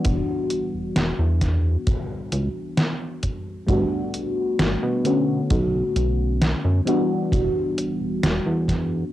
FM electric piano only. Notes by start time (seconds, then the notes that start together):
Already playing: E3 G3 B3 D4 F#4
3.67 G3 A3 B3 D4 F#4
5.04 D3 A3 B3 C#4 F#4
6.85 E3 G3 B3 D4 F#4